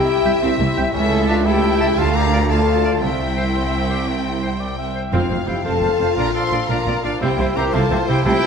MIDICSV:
0, 0, Header, 1, 13, 480
1, 0, Start_track
1, 0, Tempo, 347826
1, 1297, Time_signature, 12, 3, 24, 8
1, 11683, End_track
2, 0, Start_track
2, 0, Title_t, "Flute"
2, 0, Program_c, 0, 73
2, 0, Note_on_c, 0, 79, 91
2, 570, Note_off_c, 0, 79, 0
2, 595, Note_on_c, 0, 76, 86
2, 1289, Note_off_c, 0, 76, 0
2, 1304, Note_on_c, 0, 76, 99
2, 1769, Note_off_c, 0, 76, 0
2, 1784, Note_on_c, 0, 77, 79
2, 1867, Note_off_c, 0, 77, 0
2, 2021, Note_on_c, 0, 79, 101
2, 2745, Note_on_c, 0, 81, 106
2, 2766, Note_off_c, 0, 79, 0
2, 2971, Note_on_c, 0, 82, 101
2, 2992, Note_off_c, 0, 81, 0
2, 3461, Note_on_c, 0, 81, 92
2, 3482, Note_off_c, 0, 82, 0
2, 4176, Note_off_c, 0, 81, 0
2, 4184, Note_on_c, 0, 76, 82
2, 6314, Note_off_c, 0, 76, 0
2, 7094, Note_on_c, 0, 77, 71
2, 7533, Note_off_c, 0, 77, 0
2, 7559, Note_on_c, 0, 79, 66
2, 7641, Note_off_c, 0, 79, 0
2, 7786, Note_on_c, 0, 81, 80
2, 8502, Note_on_c, 0, 82, 84
2, 8522, Note_off_c, 0, 81, 0
2, 8736, Note_off_c, 0, 82, 0
2, 8744, Note_on_c, 0, 84, 96
2, 9213, Note_off_c, 0, 84, 0
2, 9221, Note_on_c, 0, 82, 81
2, 9700, Note_off_c, 0, 82, 0
2, 9721, Note_on_c, 0, 77, 70
2, 9804, Note_off_c, 0, 77, 0
2, 9959, Note_on_c, 0, 79, 86
2, 10441, Note_on_c, 0, 82, 87
2, 10462, Note_off_c, 0, 79, 0
2, 10675, Note_on_c, 0, 81, 84
2, 10696, Note_off_c, 0, 82, 0
2, 11150, Note_off_c, 0, 81, 0
2, 11161, Note_on_c, 0, 79, 108
2, 11385, Note_off_c, 0, 79, 0
2, 11393, Note_on_c, 0, 79, 117
2, 11683, Note_off_c, 0, 79, 0
2, 11683, End_track
3, 0, Start_track
3, 0, Title_t, "Violin section"
3, 0, Program_c, 1, 48
3, 0, Note_on_c, 1, 79, 99
3, 569, Note_off_c, 1, 79, 0
3, 582, Note_on_c, 1, 76, 86
3, 1284, Note_off_c, 1, 76, 0
3, 1301, Note_on_c, 1, 76, 81
3, 1767, Note_off_c, 1, 76, 0
3, 1771, Note_on_c, 1, 77, 86
3, 2006, Note_off_c, 1, 77, 0
3, 2013, Note_on_c, 1, 79, 102
3, 2717, Note_off_c, 1, 79, 0
3, 2720, Note_on_c, 1, 81, 106
3, 2949, Note_on_c, 1, 82, 94
3, 2965, Note_off_c, 1, 81, 0
3, 3432, Note_off_c, 1, 82, 0
3, 3447, Note_on_c, 1, 81, 86
3, 4162, Note_off_c, 1, 81, 0
3, 4171, Note_on_c, 1, 76, 75
3, 6307, Note_off_c, 1, 76, 0
3, 7083, Note_on_c, 1, 77, 74
3, 7528, Note_off_c, 1, 77, 0
3, 7557, Note_on_c, 1, 79, 73
3, 7787, Note_on_c, 1, 81, 76
3, 7798, Note_off_c, 1, 79, 0
3, 8500, Note_off_c, 1, 81, 0
3, 8519, Note_on_c, 1, 82, 99
3, 8756, Note_off_c, 1, 82, 0
3, 8765, Note_on_c, 1, 84, 86
3, 9232, Note_off_c, 1, 84, 0
3, 9236, Note_on_c, 1, 82, 84
3, 9717, Note_off_c, 1, 82, 0
3, 9725, Note_on_c, 1, 77, 79
3, 9949, Note_on_c, 1, 79, 81
3, 9956, Note_off_c, 1, 77, 0
3, 10421, Note_off_c, 1, 79, 0
3, 10438, Note_on_c, 1, 82, 93
3, 10532, Note_off_c, 1, 82, 0
3, 10666, Note_on_c, 1, 81, 84
3, 11133, Note_on_c, 1, 79, 99
3, 11136, Note_off_c, 1, 81, 0
3, 11349, Note_off_c, 1, 79, 0
3, 11366, Note_on_c, 1, 79, 125
3, 11683, Note_off_c, 1, 79, 0
3, 11683, End_track
4, 0, Start_track
4, 0, Title_t, "Cor anglais"
4, 0, Program_c, 2, 69
4, 344, Note_on_c, 2, 79, 81
4, 428, Note_off_c, 2, 79, 0
4, 1066, Note_on_c, 2, 79, 78
4, 1149, Note_off_c, 2, 79, 0
4, 1770, Note_on_c, 2, 81, 80
4, 1855, Note_off_c, 2, 81, 0
4, 2489, Note_on_c, 2, 81, 82
4, 2573, Note_off_c, 2, 81, 0
4, 3207, Note_on_c, 2, 77, 90
4, 3293, Note_off_c, 2, 77, 0
4, 3942, Note_on_c, 2, 77, 66
4, 4025, Note_off_c, 2, 77, 0
4, 4662, Note_on_c, 2, 79, 54
4, 4748, Note_off_c, 2, 79, 0
4, 4906, Note_on_c, 2, 72, 69
4, 5391, Note_on_c, 2, 74, 65
4, 5412, Note_off_c, 2, 72, 0
4, 5628, Note_on_c, 2, 72, 62
4, 5648, Note_off_c, 2, 74, 0
4, 6349, Note_on_c, 2, 74, 72
4, 6369, Note_off_c, 2, 72, 0
4, 6584, Note_off_c, 2, 74, 0
4, 6593, Note_on_c, 2, 76, 64
4, 7070, Note_off_c, 2, 76, 0
4, 7083, Note_on_c, 2, 77, 68
4, 7191, Note_off_c, 2, 77, 0
4, 7339, Note_on_c, 2, 77, 61
4, 7442, Note_off_c, 2, 77, 0
4, 7562, Note_on_c, 2, 77, 48
4, 7670, Note_off_c, 2, 77, 0
4, 7801, Note_on_c, 2, 77, 66
4, 7909, Note_off_c, 2, 77, 0
4, 8038, Note_on_c, 2, 77, 61
4, 8147, Note_off_c, 2, 77, 0
4, 8282, Note_on_c, 2, 77, 53
4, 8390, Note_off_c, 2, 77, 0
4, 8525, Note_on_c, 2, 77, 58
4, 8632, Note_off_c, 2, 77, 0
4, 8776, Note_on_c, 2, 77, 65
4, 8881, Note_off_c, 2, 77, 0
4, 9001, Note_on_c, 2, 77, 66
4, 9108, Note_off_c, 2, 77, 0
4, 9241, Note_on_c, 2, 77, 63
4, 9348, Note_off_c, 2, 77, 0
4, 9480, Note_on_c, 2, 77, 63
4, 9588, Note_off_c, 2, 77, 0
4, 9724, Note_on_c, 2, 77, 58
4, 9830, Note_off_c, 2, 77, 0
4, 9954, Note_on_c, 2, 76, 76
4, 10062, Note_off_c, 2, 76, 0
4, 10191, Note_on_c, 2, 76, 70
4, 10299, Note_off_c, 2, 76, 0
4, 10433, Note_on_c, 2, 76, 60
4, 10541, Note_off_c, 2, 76, 0
4, 10669, Note_on_c, 2, 76, 75
4, 10778, Note_off_c, 2, 76, 0
4, 10916, Note_on_c, 2, 76, 72
4, 11022, Note_off_c, 2, 76, 0
4, 11151, Note_on_c, 2, 76, 64
4, 11258, Note_off_c, 2, 76, 0
4, 11381, Note_on_c, 2, 81, 69
4, 11490, Note_off_c, 2, 81, 0
4, 11623, Note_on_c, 2, 81, 80
4, 11683, Note_off_c, 2, 81, 0
4, 11683, End_track
5, 0, Start_track
5, 0, Title_t, "Violin section"
5, 0, Program_c, 3, 48
5, 0, Note_on_c, 3, 76, 85
5, 1266, Note_off_c, 3, 76, 0
5, 1283, Note_on_c, 3, 76, 90
5, 1955, Note_off_c, 3, 76, 0
5, 2004, Note_on_c, 3, 76, 79
5, 2712, Note_off_c, 3, 76, 0
5, 2737, Note_on_c, 3, 77, 95
5, 3422, Note_off_c, 3, 77, 0
5, 3439, Note_on_c, 3, 77, 71
5, 4157, Note_off_c, 3, 77, 0
5, 4179, Note_on_c, 3, 79, 70
5, 6788, Note_off_c, 3, 79, 0
5, 7080, Note_on_c, 3, 77, 67
5, 9901, Note_off_c, 3, 77, 0
5, 9952, Note_on_c, 3, 72, 75
5, 11683, Note_off_c, 3, 72, 0
5, 11683, End_track
6, 0, Start_track
6, 0, Title_t, "Clarinet"
6, 0, Program_c, 4, 71
6, 354, Note_on_c, 4, 76, 81
6, 437, Note_off_c, 4, 76, 0
6, 1063, Note_on_c, 4, 76, 81
6, 1146, Note_off_c, 4, 76, 0
6, 1793, Note_on_c, 4, 76, 94
6, 1876, Note_off_c, 4, 76, 0
6, 2502, Note_on_c, 4, 76, 92
6, 2584, Note_off_c, 4, 76, 0
6, 3219, Note_on_c, 4, 74, 78
6, 3302, Note_off_c, 4, 74, 0
6, 3934, Note_on_c, 4, 74, 74
6, 4019, Note_off_c, 4, 74, 0
6, 4651, Note_on_c, 4, 72, 71
6, 4741, Note_off_c, 4, 72, 0
6, 5380, Note_on_c, 4, 72, 59
6, 5467, Note_off_c, 4, 72, 0
6, 6107, Note_on_c, 4, 72, 59
6, 6193, Note_off_c, 4, 72, 0
6, 6832, Note_on_c, 4, 72, 54
6, 6920, Note_off_c, 4, 72, 0
6, 7078, Note_on_c, 4, 72, 69
6, 7187, Note_off_c, 4, 72, 0
6, 7308, Note_on_c, 4, 72, 61
6, 7419, Note_off_c, 4, 72, 0
6, 7558, Note_on_c, 4, 72, 66
6, 7666, Note_off_c, 4, 72, 0
6, 7795, Note_on_c, 4, 72, 59
6, 7904, Note_off_c, 4, 72, 0
6, 8038, Note_on_c, 4, 72, 62
6, 8147, Note_off_c, 4, 72, 0
6, 8292, Note_on_c, 4, 72, 67
6, 8398, Note_off_c, 4, 72, 0
6, 8530, Note_on_c, 4, 74, 61
6, 8637, Note_off_c, 4, 74, 0
6, 8771, Note_on_c, 4, 74, 60
6, 8877, Note_off_c, 4, 74, 0
6, 9009, Note_on_c, 4, 74, 68
6, 9115, Note_off_c, 4, 74, 0
6, 9257, Note_on_c, 4, 74, 60
6, 9361, Note_off_c, 4, 74, 0
6, 9495, Note_on_c, 4, 74, 73
6, 9599, Note_off_c, 4, 74, 0
6, 9730, Note_on_c, 4, 74, 63
6, 9835, Note_off_c, 4, 74, 0
6, 9968, Note_on_c, 4, 72, 72
6, 10073, Note_off_c, 4, 72, 0
6, 10214, Note_on_c, 4, 72, 70
6, 10317, Note_off_c, 4, 72, 0
6, 10451, Note_on_c, 4, 72, 76
6, 10555, Note_off_c, 4, 72, 0
6, 10689, Note_on_c, 4, 72, 69
6, 10793, Note_off_c, 4, 72, 0
6, 10921, Note_on_c, 4, 72, 65
6, 11026, Note_off_c, 4, 72, 0
6, 11168, Note_on_c, 4, 72, 76
6, 11271, Note_off_c, 4, 72, 0
6, 11401, Note_on_c, 4, 72, 76
6, 11506, Note_off_c, 4, 72, 0
6, 11683, End_track
7, 0, Start_track
7, 0, Title_t, "Harp"
7, 0, Program_c, 5, 46
7, 0, Note_on_c, 5, 48, 73
7, 0, Note_on_c, 5, 79, 55
7, 110, Note_on_c, 5, 60, 61
7, 342, Note_on_c, 5, 67, 65
7, 582, Note_on_c, 5, 72, 78
7, 818, Note_on_c, 5, 76, 77
7, 1044, Note_off_c, 5, 67, 0
7, 1061, Note_on_c, 5, 67, 76
7, 1307, Note_on_c, 5, 49, 80
7, 1316, Note_off_c, 5, 72, 0
7, 1318, Note_off_c, 5, 48, 0
7, 1319, Note_off_c, 5, 60, 0
7, 1537, Note_on_c, 5, 57, 62
7, 1776, Note_on_c, 5, 69, 63
7, 2002, Note_on_c, 5, 64, 76
7, 2238, Note_off_c, 5, 76, 0
7, 2255, Note_on_c, 5, 76, 67
7, 2476, Note_off_c, 5, 69, 0
7, 2493, Note_on_c, 5, 69, 79
7, 2728, Note_on_c, 5, 50, 78
7, 2744, Note_off_c, 5, 64, 0
7, 2746, Note_off_c, 5, 79, 0
7, 2751, Note_off_c, 5, 67, 0
7, 2752, Note_off_c, 5, 76, 0
7, 2755, Note_off_c, 5, 49, 0
7, 2949, Note_off_c, 5, 57, 0
7, 3207, Note_on_c, 5, 74, 60
7, 3430, Note_off_c, 5, 69, 0
7, 3446, Note_on_c, 5, 69, 65
7, 3690, Note_on_c, 5, 77, 61
7, 3921, Note_off_c, 5, 74, 0
7, 4167, Note_on_c, 5, 48, 68
7, 4195, Note_off_c, 5, 69, 0
7, 4196, Note_off_c, 5, 77, 0
7, 4197, Note_off_c, 5, 50, 0
7, 4419, Note_on_c, 5, 60, 51
7, 4661, Note_on_c, 5, 76, 52
7, 4903, Note_on_c, 5, 72, 50
7, 5136, Note_on_c, 5, 79, 50
7, 5359, Note_off_c, 5, 76, 0
7, 5376, Note_on_c, 5, 76, 49
7, 5621, Note_on_c, 5, 55, 45
7, 5844, Note_off_c, 5, 60, 0
7, 5861, Note_on_c, 5, 60, 49
7, 6087, Note_off_c, 5, 76, 0
7, 6104, Note_on_c, 5, 76, 41
7, 6339, Note_off_c, 5, 72, 0
7, 6355, Note_on_c, 5, 72, 54
7, 6583, Note_off_c, 5, 79, 0
7, 6600, Note_on_c, 5, 79, 51
7, 6824, Note_off_c, 5, 76, 0
7, 6841, Note_on_c, 5, 76, 50
7, 7071, Note_on_c, 5, 41, 66
7, 7096, Note_off_c, 5, 48, 0
7, 7098, Note_off_c, 5, 55, 0
7, 7102, Note_off_c, 5, 76, 0
7, 7103, Note_off_c, 5, 79, 0
7, 7300, Note_off_c, 5, 60, 0
7, 7317, Note_on_c, 5, 60, 49
7, 7557, Note_on_c, 5, 77, 51
7, 7783, Note_off_c, 5, 72, 0
7, 7799, Note_on_c, 5, 72, 60
7, 8026, Note_off_c, 5, 77, 0
7, 8043, Note_on_c, 5, 77, 49
7, 8272, Note_on_c, 5, 65, 58
7, 8509, Note_on_c, 5, 46, 76
7, 8535, Note_off_c, 5, 41, 0
7, 8538, Note_off_c, 5, 60, 0
7, 8541, Note_off_c, 5, 72, 0
7, 8759, Note_on_c, 5, 62, 50
7, 8984, Note_off_c, 5, 77, 0
7, 9000, Note_on_c, 5, 77, 54
7, 9235, Note_on_c, 5, 74, 64
7, 9447, Note_off_c, 5, 77, 0
7, 9464, Note_on_c, 5, 77, 61
7, 9686, Note_off_c, 5, 65, 0
7, 9703, Note_on_c, 5, 65, 61
7, 9946, Note_on_c, 5, 48, 71
7, 9969, Note_off_c, 5, 65, 0
7, 9969, Note_off_c, 5, 77, 0
7, 9970, Note_off_c, 5, 46, 0
7, 9974, Note_off_c, 5, 74, 0
7, 9975, Note_off_c, 5, 62, 0
7, 10200, Note_on_c, 5, 60, 57
7, 10434, Note_on_c, 5, 72, 61
7, 10679, Note_on_c, 5, 64, 80
7, 10914, Note_on_c, 5, 76, 59
7, 11137, Note_off_c, 5, 72, 0
7, 11154, Note_on_c, 5, 72, 78
7, 11371, Note_off_c, 5, 48, 0
7, 11388, Note_on_c, 5, 48, 84
7, 11408, Note_off_c, 5, 76, 0
7, 11409, Note_off_c, 5, 64, 0
7, 11627, Note_on_c, 5, 57, 69
7, 11683, Note_off_c, 5, 48, 0
7, 11683, Note_off_c, 5, 57, 0
7, 11683, Note_off_c, 5, 60, 0
7, 11683, Note_off_c, 5, 72, 0
7, 11683, End_track
8, 0, Start_track
8, 0, Title_t, "French horn section"
8, 0, Program_c, 6, 60
8, 0, Note_on_c, 6, 67, 117
8, 566, Note_off_c, 6, 67, 0
8, 592, Note_on_c, 6, 64, 110
8, 1288, Note_off_c, 6, 64, 0
8, 1303, Note_on_c, 6, 64, 112
8, 1768, Note_off_c, 6, 64, 0
8, 1786, Note_on_c, 6, 65, 108
8, 2013, Note_on_c, 6, 67, 127
8, 2018, Note_off_c, 6, 65, 0
8, 2731, Note_off_c, 6, 67, 0
8, 2740, Note_on_c, 6, 69, 112
8, 2966, Note_on_c, 6, 70, 99
8, 2971, Note_off_c, 6, 69, 0
8, 3450, Note_on_c, 6, 69, 111
8, 3451, Note_off_c, 6, 70, 0
8, 4163, Note_off_c, 6, 69, 0
8, 4182, Note_on_c, 6, 64, 97
8, 6313, Note_off_c, 6, 64, 0
8, 7071, Note_on_c, 6, 65, 99
8, 7521, Note_off_c, 6, 65, 0
8, 7544, Note_on_c, 6, 67, 81
8, 7787, Note_off_c, 6, 67, 0
8, 7799, Note_on_c, 6, 69, 100
8, 8507, Note_off_c, 6, 69, 0
8, 8508, Note_on_c, 6, 70, 92
8, 8750, Note_off_c, 6, 70, 0
8, 8757, Note_on_c, 6, 72, 92
8, 9228, Note_off_c, 6, 72, 0
8, 9233, Note_on_c, 6, 70, 95
8, 9715, Note_off_c, 6, 70, 0
8, 9715, Note_on_c, 6, 65, 97
8, 9945, Note_on_c, 6, 67, 100
8, 9955, Note_off_c, 6, 65, 0
8, 10419, Note_off_c, 6, 67, 0
8, 10440, Note_on_c, 6, 70, 109
8, 10675, Note_on_c, 6, 69, 98
8, 10676, Note_off_c, 6, 70, 0
8, 11150, Note_off_c, 6, 69, 0
8, 11160, Note_on_c, 6, 67, 115
8, 11378, Note_off_c, 6, 67, 0
8, 11394, Note_on_c, 6, 67, 110
8, 11683, Note_off_c, 6, 67, 0
8, 11683, End_track
9, 0, Start_track
9, 0, Title_t, "Trumpet"
9, 0, Program_c, 7, 56
9, 0, Note_on_c, 7, 64, 94
9, 564, Note_off_c, 7, 64, 0
9, 574, Note_on_c, 7, 60, 83
9, 1288, Note_on_c, 7, 61, 91
9, 1309, Note_off_c, 7, 60, 0
9, 1762, Note_off_c, 7, 61, 0
9, 1771, Note_on_c, 7, 62, 97
9, 2014, Note_on_c, 7, 64, 100
9, 2035, Note_off_c, 7, 62, 0
9, 2732, Note_on_c, 7, 65, 111
9, 2753, Note_off_c, 7, 64, 0
9, 2971, Note_on_c, 7, 67, 92
9, 2992, Note_off_c, 7, 65, 0
9, 3443, Note_off_c, 7, 67, 0
9, 3451, Note_on_c, 7, 65, 88
9, 4177, Note_on_c, 7, 60, 72
9, 4198, Note_off_c, 7, 65, 0
9, 6354, Note_off_c, 7, 60, 0
9, 7066, Note_on_c, 7, 60, 76
9, 7548, Note_on_c, 7, 64, 79
9, 7569, Note_off_c, 7, 60, 0
9, 7775, Note_off_c, 7, 64, 0
9, 7783, Note_on_c, 7, 65, 80
9, 8499, Note_off_c, 7, 65, 0
9, 8506, Note_on_c, 7, 65, 98
9, 8743, Note_off_c, 7, 65, 0
9, 8751, Note_on_c, 7, 69, 78
9, 9225, Note_off_c, 7, 69, 0
9, 9231, Note_on_c, 7, 65, 78
9, 9716, Note_on_c, 7, 62, 73
9, 9736, Note_off_c, 7, 65, 0
9, 9951, Note_off_c, 7, 62, 0
9, 9959, Note_on_c, 7, 64, 85
9, 10438, Note_on_c, 7, 67, 96
9, 10459, Note_off_c, 7, 64, 0
9, 10678, Note_on_c, 7, 65, 86
9, 10699, Note_off_c, 7, 67, 0
9, 11148, Note_off_c, 7, 65, 0
9, 11156, Note_on_c, 7, 64, 93
9, 11382, Note_off_c, 7, 64, 0
9, 11390, Note_on_c, 7, 64, 119
9, 11683, Note_off_c, 7, 64, 0
9, 11683, End_track
10, 0, Start_track
10, 0, Title_t, "Viola section"
10, 0, Program_c, 8, 48
10, 0, Note_on_c, 8, 67, 71
10, 354, Note_on_c, 8, 60, 68
10, 447, Note_off_c, 8, 60, 0
10, 588, Note_on_c, 8, 60, 89
10, 807, Note_off_c, 8, 60, 0
10, 833, Note_on_c, 8, 58, 74
10, 926, Note_off_c, 8, 58, 0
10, 1071, Note_on_c, 8, 60, 84
10, 1164, Note_off_c, 8, 60, 0
10, 1244, Note_off_c, 8, 67, 0
10, 1304, Note_on_c, 8, 57, 93
10, 1305, Note_on_c, 8, 69, 94
10, 1967, Note_off_c, 8, 57, 0
10, 1967, Note_off_c, 8, 69, 0
10, 2023, Note_on_c, 8, 57, 80
10, 2026, Note_on_c, 8, 69, 84
10, 2717, Note_off_c, 8, 57, 0
10, 2723, Note_off_c, 8, 69, 0
10, 2732, Note_on_c, 8, 65, 80
10, 2734, Note_on_c, 8, 57, 77
10, 3438, Note_off_c, 8, 65, 0
10, 3440, Note_off_c, 8, 57, 0
10, 3454, Note_on_c, 8, 65, 78
10, 3460, Note_on_c, 8, 57, 75
10, 4165, Note_off_c, 8, 65, 0
10, 4168, Note_off_c, 8, 57, 0
10, 4169, Note_on_c, 8, 60, 82
10, 4174, Note_on_c, 8, 64, 76
10, 6783, Note_off_c, 8, 60, 0
10, 6838, Note_off_c, 8, 64, 0
10, 7078, Note_on_c, 8, 60, 86
10, 7083, Note_on_c, 8, 65, 83
10, 7303, Note_off_c, 8, 60, 0
10, 7328, Note_on_c, 8, 58, 55
10, 7422, Note_off_c, 8, 58, 0
10, 7564, Note_on_c, 8, 60, 58
10, 7660, Note_off_c, 8, 60, 0
10, 7802, Note_on_c, 8, 60, 74
10, 8025, Note_off_c, 8, 60, 0
10, 8050, Note_on_c, 8, 58, 61
10, 8144, Note_off_c, 8, 58, 0
10, 8272, Note_on_c, 8, 60, 56
10, 8370, Note_off_c, 8, 60, 0
10, 8520, Note_on_c, 8, 62, 70
10, 8744, Note_off_c, 8, 62, 0
10, 9001, Note_on_c, 8, 62, 63
10, 9096, Note_off_c, 8, 62, 0
10, 9240, Note_on_c, 8, 62, 66
10, 9463, Note_off_c, 8, 62, 0
10, 9480, Note_on_c, 8, 60, 58
10, 9575, Note_off_c, 8, 60, 0
10, 9718, Note_on_c, 8, 62, 72
10, 9813, Note_off_c, 8, 62, 0
10, 9902, Note_off_c, 8, 65, 0
10, 9956, Note_on_c, 8, 60, 97
10, 9962, Note_on_c, 8, 64, 83
10, 10178, Note_off_c, 8, 60, 0
10, 10198, Note_on_c, 8, 58, 62
10, 10293, Note_off_c, 8, 58, 0
10, 10432, Note_on_c, 8, 60, 64
10, 10528, Note_off_c, 8, 60, 0
10, 10677, Note_on_c, 8, 60, 85
10, 10897, Note_off_c, 8, 60, 0
10, 10924, Note_on_c, 8, 58, 71
10, 11016, Note_off_c, 8, 58, 0
10, 11152, Note_on_c, 8, 60, 66
10, 11247, Note_off_c, 8, 60, 0
10, 11361, Note_off_c, 8, 64, 0
10, 11395, Note_on_c, 8, 65, 89
10, 11396, Note_on_c, 8, 57, 97
10, 11614, Note_off_c, 8, 57, 0
10, 11683, Note_off_c, 8, 65, 0
10, 11683, End_track
11, 0, Start_track
11, 0, Title_t, "Timpani"
11, 0, Program_c, 10, 47
11, 7082, Note_on_c, 10, 41, 99
11, 7750, Note_off_c, 10, 41, 0
11, 11391, Note_on_c, 10, 48, 90
11, 11683, Note_off_c, 10, 48, 0
11, 11683, End_track
12, 0, Start_track
12, 0, Title_t, "Cello section"
12, 0, Program_c, 11, 48
12, 340, Note_on_c, 11, 36, 72
12, 436, Note_off_c, 11, 36, 0
12, 582, Note_on_c, 11, 36, 100
12, 677, Note_off_c, 11, 36, 0
12, 814, Note_on_c, 11, 36, 78
12, 911, Note_off_c, 11, 36, 0
12, 1064, Note_on_c, 11, 36, 68
12, 1158, Note_off_c, 11, 36, 0
12, 1297, Note_on_c, 11, 37, 91
12, 2675, Note_off_c, 11, 37, 0
12, 2730, Note_on_c, 11, 38, 97
12, 4176, Note_on_c, 11, 36, 81
12, 4179, Note_off_c, 11, 38, 0
12, 6840, Note_off_c, 11, 36, 0
12, 7085, Note_on_c, 11, 41, 78
12, 7180, Note_off_c, 11, 41, 0
12, 7330, Note_on_c, 11, 41, 56
12, 7424, Note_off_c, 11, 41, 0
12, 7560, Note_on_c, 11, 41, 51
12, 7656, Note_off_c, 11, 41, 0
12, 7801, Note_on_c, 11, 41, 73
12, 7897, Note_off_c, 11, 41, 0
12, 8042, Note_on_c, 11, 41, 56
12, 8138, Note_off_c, 11, 41, 0
12, 8277, Note_on_c, 11, 41, 55
12, 8374, Note_off_c, 11, 41, 0
12, 8523, Note_on_c, 11, 46, 85
12, 8619, Note_off_c, 11, 46, 0
12, 9002, Note_on_c, 11, 46, 60
12, 9097, Note_off_c, 11, 46, 0
12, 9240, Note_on_c, 11, 46, 81
12, 9336, Note_off_c, 11, 46, 0
12, 9483, Note_on_c, 11, 46, 63
12, 9578, Note_off_c, 11, 46, 0
12, 9726, Note_on_c, 11, 46, 62
12, 9820, Note_off_c, 11, 46, 0
12, 9968, Note_on_c, 11, 48, 86
12, 10061, Note_off_c, 11, 48, 0
12, 10207, Note_on_c, 11, 48, 61
12, 10300, Note_off_c, 11, 48, 0
12, 10443, Note_on_c, 11, 48, 67
12, 10537, Note_off_c, 11, 48, 0
12, 10680, Note_on_c, 11, 48, 95
12, 10774, Note_off_c, 11, 48, 0
12, 10927, Note_on_c, 11, 48, 68
12, 11019, Note_off_c, 11, 48, 0
12, 11163, Note_on_c, 11, 48, 75
12, 11256, Note_off_c, 11, 48, 0
12, 11391, Note_on_c, 11, 48, 107
12, 11486, Note_off_c, 11, 48, 0
12, 11683, End_track
13, 0, Start_track
13, 0, Title_t, "Double bass section"
13, 0, Program_c, 12, 48
13, 333, Note_on_c, 12, 36, 66
13, 430, Note_off_c, 12, 36, 0
13, 570, Note_on_c, 12, 36, 91
13, 667, Note_off_c, 12, 36, 0
13, 812, Note_on_c, 12, 36, 64
13, 909, Note_off_c, 12, 36, 0
13, 1054, Note_on_c, 12, 36, 69
13, 1151, Note_off_c, 12, 36, 0
13, 1296, Note_on_c, 12, 37, 91
13, 2675, Note_off_c, 12, 37, 0
13, 2732, Note_on_c, 12, 38, 93
13, 4175, Note_on_c, 12, 36, 72
13, 4180, Note_off_c, 12, 38, 0
13, 6839, Note_off_c, 12, 36, 0
13, 7071, Note_on_c, 12, 29, 71
13, 7169, Note_off_c, 12, 29, 0
13, 7319, Note_on_c, 12, 29, 56
13, 7415, Note_off_c, 12, 29, 0
13, 7544, Note_on_c, 12, 29, 52
13, 7643, Note_off_c, 12, 29, 0
13, 7784, Note_on_c, 12, 29, 82
13, 7883, Note_off_c, 12, 29, 0
13, 8024, Note_on_c, 12, 29, 58
13, 8124, Note_off_c, 12, 29, 0
13, 8254, Note_on_c, 12, 29, 59
13, 8356, Note_off_c, 12, 29, 0
13, 8498, Note_on_c, 12, 34, 77
13, 8599, Note_off_c, 12, 34, 0
13, 8982, Note_on_c, 12, 34, 61
13, 9081, Note_off_c, 12, 34, 0
13, 9232, Note_on_c, 12, 34, 82
13, 9329, Note_off_c, 12, 34, 0
13, 9471, Note_on_c, 12, 34, 53
13, 9568, Note_off_c, 12, 34, 0
13, 9713, Note_on_c, 12, 34, 61
13, 9810, Note_off_c, 12, 34, 0
13, 9947, Note_on_c, 12, 36, 83
13, 10044, Note_off_c, 12, 36, 0
13, 10192, Note_on_c, 12, 36, 60
13, 10288, Note_off_c, 12, 36, 0
13, 10435, Note_on_c, 12, 36, 61
13, 10530, Note_off_c, 12, 36, 0
13, 10670, Note_on_c, 12, 36, 112
13, 10766, Note_off_c, 12, 36, 0
13, 10904, Note_on_c, 12, 36, 68
13, 11000, Note_off_c, 12, 36, 0
13, 11143, Note_on_c, 12, 36, 76
13, 11240, Note_off_c, 12, 36, 0
13, 11378, Note_on_c, 12, 36, 98
13, 11476, Note_off_c, 12, 36, 0
13, 11683, End_track
0, 0, End_of_file